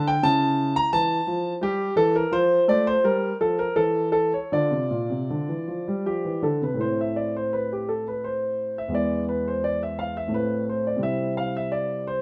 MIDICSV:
0, 0, Header, 1, 2, 480
1, 0, Start_track
1, 0, Key_signature, -1, "minor"
1, 0, Tempo, 700117
1, 165, Time_signature, 3, 2, 24, 8
1, 2567, Tempo, 769231
1, 4007, Tempo, 729040
1, 4498, Key_signature, 0, "minor"
1, 5447, Tempo, 697674
1, 8185, End_track
2, 0, Start_track
2, 0, Title_t, "Grand piano"
2, 0, Program_c, 0, 0
2, 0, Note_on_c, 0, 50, 73
2, 51, Note_on_c, 0, 79, 94
2, 99, Note_off_c, 0, 50, 0
2, 157, Note_on_c, 0, 64, 44
2, 158, Note_on_c, 0, 49, 75
2, 161, Note_on_c, 0, 81, 113
2, 167, Note_off_c, 0, 79, 0
2, 501, Note_off_c, 0, 49, 0
2, 517, Note_off_c, 0, 81, 0
2, 522, Note_on_c, 0, 82, 106
2, 635, Note_on_c, 0, 52, 68
2, 637, Note_on_c, 0, 81, 106
2, 639, Note_off_c, 0, 82, 0
2, 808, Note_off_c, 0, 52, 0
2, 871, Note_on_c, 0, 53, 66
2, 1043, Note_off_c, 0, 81, 0
2, 1044, Note_off_c, 0, 53, 0
2, 1084, Note_off_c, 0, 64, 0
2, 1106, Note_on_c, 0, 55, 65
2, 1116, Note_on_c, 0, 67, 97
2, 1281, Note_off_c, 0, 55, 0
2, 1318, Note_off_c, 0, 67, 0
2, 1343, Note_on_c, 0, 52, 74
2, 1349, Note_on_c, 0, 69, 99
2, 1471, Note_off_c, 0, 69, 0
2, 1478, Note_on_c, 0, 70, 88
2, 1520, Note_off_c, 0, 52, 0
2, 1587, Note_on_c, 0, 53, 76
2, 1589, Note_on_c, 0, 65, 47
2, 1595, Note_on_c, 0, 72, 104
2, 1596, Note_off_c, 0, 70, 0
2, 1763, Note_off_c, 0, 53, 0
2, 1800, Note_off_c, 0, 72, 0
2, 1838, Note_on_c, 0, 57, 62
2, 1844, Note_on_c, 0, 74, 97
2, 1961, Note_off_c, 0, 74, 0
2, 1969, Note_on_c, 0, 72, 96
2, 2011, Note_off_c, 0, 57, 0
2, 2047, Note_off_c, 0, 65, 0
2, 2083, Note_off_c, 0, 72, 0
2, 2084, Note_on_c, 0, 55, 62
2, 2088, Note_on_c, 0, 70, 88
2, 2255, Note_off_c, 0, 55, 0
2, 2289, Note_off_c, 0, 70, 0
2, 2334, Note_on_c, 0, 53, 56
2, 2337, Note_on_c, 0, 69, 80
2, 2450, Note_off_c, 0, 69, 0
2, 2460, Note_on_c, 0, 70, 84
2, 2507, Note_off_c, 0, 53, 0
2, 2575, Note_off_c, 0, 70, 0
2, 2575, Note_on_c, 0, 52, 59
2, 2577, Note_on_c, 0, 69, 86
2, 2771, Note_off_c, 0, 69, 0
2, 2802, Note_on_c, 0, 69, 87
2, 2915, Note_off_c, 0, 52, 0
2, 2921, Note_off_c, 0, 69, 0
2, 2936, Note_on_c, 0, 73, 69
2, 3050, Note_off_c, 0, 73, 0
2, 3051, Note_on_c, 0, 50, 60
2, 3054, Note_on_c, 0, 65, 37
2, 3057, Note_on_c, 0, 74, 84
2, 3164, Note_off_c, 0, 50, 0
2, 3170, Note_on_c, 0, 48, 49
2, 3284, Note_off_c, 0, 48, 0
2, 3292, Note_on_c, 0, 46, 52
2, 3405, Note_off_c, 0, 46, 0
2, 3414, Note_on_c, 0, 48, 54
2, 3526, Note_off_c, 0, 48, 0
2, 3539, Note_on_c, 0, 50, 50
2, 3648, Note_off_c, 0, 50, 0
2, 3655, Note_on_c, 0, 52, 47
2, 3765, Note_off_c, 0, 52, 0
2, 3772, Note_on_c, 0, 53, 48
2, 3883, Note_off_c, 0, 53, 0
2, 3899, Note_on_c, 0, 55, 50
2, 4006, Note_off_c, 0, 55, 0
2, 4012, Note_on_c, 0, 53, 49
2, 4014, Note_on_c, 0, 67, 67
2, 4128, Note_off_c, 0, 53, 0
2, 4137, Note_on_c, 0, 52, 51
2, 4251, Note_on_c, 0, 50, 51
2, 4253, Note_off_c, 0, 52, 0
2, 4257, Note_on_c, 0, 69, 59
2, 4260, Note_off_c, 0, 67, 0
2, 4264, Note_off_c, 0, 74, 0
2, 4370, Note_off_c, 0, 50, 0
2, 4379, Note_off_c, 0, 69, 0
2, 4379, Note_on_c, 0, 48, 41
2, 4392, Note_on_c, 0, 71, 57
2, 4460, Note_on_c, 0, 45, 38
2, 4472, Note_on_c, 0, 57, 34
2, 4478, Note_off_c, 0, 65, 0
2, 4480, Note_on_c, 0, 60, 33
2, 4491, Note_on_c, 0, 64, 33
2, 4493, Note_off_c, 0, 48, 0
2, 4504, Note_on_c, 0, 72, 74
2, 4505, Note_off_c, 0, 71, 0
2, 4619, Note_off_c, 0, 72, 0
2, 4637, Note_on_c, 0, 76, 60
2, 4739, Note_on_c, 0, 74, 64
2, 4745, Note_off_c, 0, 76, 0
2, 4855, Note_off_c, 0, 74, 0
2, 4871, Note_on_c, 0, 72, 65
2, 4981, Note_off_c, 0, 72, 0
2, 4981, Note_on_c, 0, 71, 65
2, 5095, Note_off_c, 0, 71, 0
2, 5109, Note_on_c, 0, 67, 51
2, 5215, Note_on_c, 0, 69, 58
2, 5219, Note_off_c, 0, 67, 0
2, 5330, Note_off_c, 0, 69, 0
2, 5342, Note_on_c, 0, 71, 61
2, 5449, Note_on_c, 0, 72, 66
2, 5452, Note_off_c, 0, 71, 0
2, 5806, Note_off_c, 0, 72, 0
2, 5821, Note_on_c, 0, 76, 62
2, 5874, Note_off_c, 0, 45, 0
2, 5880, Note_off_c, 0, 57, 0
2, 5884, Note_off_c, 0, 60, 0
2, 5888, Note_on_c, 0, 40, 40
2, 5890, Note_off_c, 0, 64, 0
2, 5896, Note_on_c, 0, 56, 34
2, 5903, Note_on_c, 0, 59, 33
2, 5914, Note_on_c, 0, 64, 35
2, 5930, Note_off_c, 0, 76, 0
2, 5933, Note_on_c, 0, 74, 74
2, 6130, Note_off_c, 0, 74, 0
2, 6168, Note_on_c, 0, 71, 61
2, 6284, Note_off_c, 0, 71, 0
2, 6298, Note_on_c, 0, 72, 65
2, 6410, Note_off_c, 0, 72, 0
2, 6411, Note_on_c, 0, 74, 73
2, 6527, Note_off_c, 0, 74, 0
2, 6540, Note_on_c, 0, 76, 61
2, 6650, Note_on_c, 0, 77, 70
2, 6652, Note_off_c, 0, 76, 0
2, 6767, Note_off_c, 0, 77, 0
2, 6775, Note_on_c, 0, 76, 69
2, 6839, Note_off_c, 0, 40, 0
2, 6843, Note_off_c, 0, 56, 0
2, 6847, Note_off_c, 0, 59, 0
2, 6849, Note_on_c, 0, 45, 41
2, 6852, Note_off_c, 0, 64, 0
2, 6856, Note_on_c, 0, 57, 34
2, 6866, Note_on_c, 0, 60, 30
2, 6879, Note_on_c, 0, 64, 32
2, 6889, Note_off_c, 0, 76, 0
2, 6894, Note_on_c, 0, 71, 73
2, 7093, Note_off_c, 0, 71, 0
2, 7136, Note_on_c, 0, 72, 61
2, 7248, Note_off_c, 0, 72, 0
2, 7257, Note_on_c, 0, 74, 61
2, 7323, Note_on_c, 0, 48, 45
2, 7329, Note_off_c, 0, 45, 0
2, 7331, Note_on_c, 0, 55, 37
2, 7332, Note_off_c, 0, 57, 0
2, 7333, Note_off_c, 0, 60, 0
2, 7341, Note_off_c, 0, 64, 0
2, 7344, Note_on_c, 0, 60, 36
2, 7351, Note_on_c, 0, 64, 36
2, 7367, Note_on_c, 0, 76, 76
2, 7369, Note_off_c, 0, 74, 0
2, 7568, Note_off_c, 0, 76, 0
2, 7603, Note_on_c, 0, 77, 75
2, 7722, Note_off_c, 0, 77, 0
2, 7735, Note_on_c, 0, 76, 72
2, 7840, Note_on_c, 0, 74, 72
2, 7849, Note_off_c, 0, 76, 0
2, 8083, Note_off_c, 0, 74, 0
2, 8086, Note_on_c, 0, 72, 71
2, 8185, Note_off_c, 0, 48, 0
2, 8185, Note_off_c, 0, 55, 0
2, 8185, Note_off_c, 0, 60, 0
2, 8185, Note_off_c, 0, 64, 0
2, 8185, Note_off_c, 0, 72, 0
2, 8185, End_track
0, 0, End_of_file